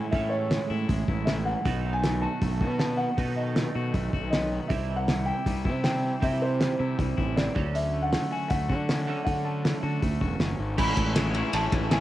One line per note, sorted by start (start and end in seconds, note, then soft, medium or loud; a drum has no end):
0.00 0.11 A2 medium
0.00 0.11 E3 medium
0.00 0.31 E3 medium
0.00 0.12 G#3 medium
0.00 0.32 G#3 medium
0.00 0.12 C#4 medium
0.00 0.70 C#4 medium
0.00 0.12 E4 medium
0.00 0.51 E4 medium
0.00 0.14 A4 medium
0.00 0.13 G#5 medium
0.11 1.64 A2 medium
0.11 1.08 A2 medium
0.11 0.58 A2 medium
0.11 1.64 E3 medium
0.11 1.64 G#3 medium
0.11 1.65 C#4 medium
0.11 1.65 E4 medium
0.11 1.67 A4 medium
0.11 0.32 E5 medium
0.11 kick medium
0.11 open hi-hat soft
0.29 1.27 E3 medium
0.29 0.66 C#5 medium
0.51 0.88 G#3 medium
0.51 snare loud
0.51 open hi-hat soft
0.70 0.85 A2 medium
0.70 1.07 E4 medium
0.89 1.04 A1 medium
0.89 1.66 G#3 medium
0.89 kick medium
0.89 open hi-hat soft
1.08 1.53 A1 medium
1.08 1.66 E4 medium
1.08 kick medium
1.25 1.66 C#4 medium
1.25 1.30 E5 medium
1.25 snare medium
1.25 open hi-hat soft
1.45 1.66 E3 medium
1.45 1.90 F#5 medium
1.65 2.26 B1 medium
1.65 3.16 B2 medium
1.65 2.61 B2 medium
1.65 3.17 D#3 medium
1.65 3.17 F#3 medium
1.65 3.17 B3 medium
1.65 3.18 D#4 medium
1.65 3.18 A4 medium
1.65 kick medium
1.65 open hi-hat soft
1.85 2.80 D#3 medium
1.93 2.23 G#5 loud
2.04 2.41 A3 medium
2.04 snare loud
2.04 open hi-hat medium
2.21 2.60 F#4 medium
2.21 2.77 A5 medium
2.42 2.62 B1 medium
2.42 3.37 A3 medium
2.42 kick medium
2.42 open hi-hat soft
2.61 3.06 B2 medium
2.61 3.56 F#4 medium
2.61 kick medium
2.79 3.75 B3 medium
2.79 2.99 A5 medium
2.79 snare medium
2.79 open hi-hat soft
2.97 3.37 D#3 medium
2.97 3.37 F#5 loud
3.17 4.69 B2 medium
3.17 3.63 B2 medium
3.17 4.13 B2 medium
3.17 4.69 D#3 medium
3.17 4.69 F#3 medium
3.17 4.70 B3 medium
3.17 4.70 D#4 medium
3.17 4.70 A4 medium
3.17 kick medium
3.17 open hi-hat soft
3.36 4.33 D#3 medium
3.36 3.72 D#5 medium
3.56 3.94 A3 medium
3.56 snare loud
3.56 open hi-hat soft
3.75 3.90 B2 medium
3.75 4.13 F#4 medium
3.94 4.09 B1 medium
3.94 4.71 A3 medium
3.94 kick medium
3.94 open hi-hat soft
4.13 4.58 B1 medium
4.13 4.71 F#4 medium
4.13 kick medium
4.30 4.71 B3 medium
4.30 4.70 D#5 medium
4.30 snare medium
4.30 open hi-hat soft
4.52 4.71 D#3 medium
4.68 5.30 C2 medium
4.68 6.20 C3 medium
4.68 5.66 C3 medium
4.68 6.21 G3 medium
4.68 6.21 C4 medium
4.68 4.99 E5 medium
4.68 kick loud
4.68 open hi-hat soft
4.72 6.22 E4 medium
4.90 5.85 E3 medium
4.96 5.27 F#5 loud
5.08 5.46 G3 medium
5.08 snare loud
5.08 open hi-hat medium
5.26 5.64 E4 medium
5.26 5.82 G5 loud
5.46 5.67 C2 medium
5.46 6.42 G3 medium
5.46 kick medium
5.46 open hi-hat soft
5.65 6.10 C3 medium
5.65 6.60 E4 medium
5.65 kick medium
5.84 6.80 C4 medium
5.84 6.19 G5 medium
5.84 snare medium
5.84 open hi-hat soft
6.04 6.40 E3 medium
6.21 7.54 C3 medium
6.21 6.68 C3 loud
6.21 7.18 C3 medium
6.21 7.54 G3 medium
6.21 7.55 C4 medium
6.21 7.55 E4 medium
6.21 6.40 E5 medium
6.21 kick medium
6.21 open hi-hat soft
6.42 7.37 E3 medium
6.42 6.77 C5 medium
6.61 6.98 G3 medium
6.61 snare loud
6.61 open hi-hat soft
6.79 6.95 C3 medium
6.79 7.16 E4 medium
6.99 7.14 C2 medium
6.99 7.56 G3 medium
6.99 kick medium
6.99 open hi-hat soft
7.17 7.48 A1 medium
7.17 7.56 E4 medium
7.17 kick medium
7.36 7.56 C4 medium
7.36 7.76 D5 medium
7.36 snare medium
7.36 open hi-hat soft
7.55 8.16 D2 medium
7.55 9.06 D3 medium
7.55 7.74 D3 medium
7.55 9.06 F#3 medium
7.55 9.08 A3 medium
7.55 9.09 C#4 medium
7.55 kick medium
7.74 8.70 D3 medium
7.74 8.04 E5 medium
7.74 open hi-hat soft
7.94 8.12 A3 medium
8.02 8.32 F#5 medium
8.13 8.50 A3 medium
8.13 snare loud
8.13 open hi-hat medium
8.31 8.68 F#4 medium
8.31 8.51 G#5 medium
8.49 8.71 D2 medium
8.49 9.44 A3 medium
8.49 9.22 F#5 medium
8.49 kick loud
8.49 open hi-hat medium
8.69 9.14 D3 medium
8.69 9.64 F#4 medium
8.69 kick medium
8.89 9.84 C#4 medium
8.89 snare medium
8.89 open hi-hat soft
9.07 10.58 D3 medium
9.07 9.26 D3 medium
9.07 10.58 F#3 medium
9.07 10.59 A3 medium
9.07 10.59 C#4 medium
9.24 9.72 D3 medium
9.24 10.22 D3 medium
9.24 9.43 F#5 medium
9.24 kick medium
9.24 open hi-hat soft
9.44 9.63 A3 medium
9.44 9.98 A5 medium
9.64 10.01 A3 medium
9.64 snare loud
9.64 open hi-hat soft
9.83 9.98 D3 medium
9.83 10.20 F#4 medium
10.02 10.17 D2 medium
10.02 10.78 A3 medium
10.02 kick medium
10.02 open hi-hat soft
10.21 10.39 E1 medium
10.21 10.78 F#4 medium
10.21 kick medium
10.39 10.57 F#1 medium
10.39 10.77 C#4 medium
10.39 snare medium
10.39 open hi-hat soft
10.59 10.76 G#1 medium
10.59 10.77 D3 medium
10.77 10.93 A1 medium
10.77 11.15 A2 medium
10.77 11.15 A2 loud
10.77 11.15 E3 medium
10.77 11.16 E3 medium
10.77 11.16 G#3 loud
10.77 11.16 G#3 medium
10.77 12.00 C#4 medium
10.77 11.16 C#4 medium
10.77 11.17 C#4 loud
10.77 11.16 E4 loud
10.77 11.17 E4 loud
10.77 12.00 C#5 medium
10.77 12.00 E5 medium
10.77 11.56 B5 loud
10.77 kick loud
10.77 crash loud
10.97 11.42 A1 medium
10.97 kick medium
10.97 ride medium
11.15 11.33 A2 medium
11.15 11.35 A2 medium
11.15 11.34 E3 medium
11.15 11.35 E3 medium
11.15 11.35 G#3 medium
11.15 11.35 C#4 medium
11.15 11.36 C#4 loud
11.15 11.36 E4 medium
11.15 11.37 E4 medium
11.15 snare loud
11.15 ride loud
11.34 11.51 A2 medium
11.34 11.52 A2 medium
11.34 11.52 E3 medium
11.34 11.53 E3 medium
11.34 11.52 G#3 medium
11.34 11.53 G#3 medium
11.34 11.53 C#4 medium
11.34 11.54 E4 medium
11.34 11.55 E4 medium
11.34 ride medium
11.52 11.68 A1 medium
11.52 11.89 A2 medium
11.52 11.90 A2 medium
11.52 11.91 E3 loud
11.52 11.91 E3 medium
11.52 11.91 G#3 loud
11.52 11.90 G#3 medium
11.52 11.91 C#4 loud
11.52 11.91 C#4 medium
11.52 11.92 E4 medium
11.52 11.92 E4 loud
11.52 11.93 A5 loud
11.52 ride loud
11.72 12.00 A1 medium
11.72 kick medium
11.72 ride medium
11.91 12.00 A2 medium
11.91 12.00 E3 medium
11.91 12.00 G#3 loud
11.91 12.00 G#3 medium
11.91 12.00 C#4 medium
11.91 12.00 E4 medium
11.91 12.00 G#5 medium
11.91 snare loud
11.91 ride medium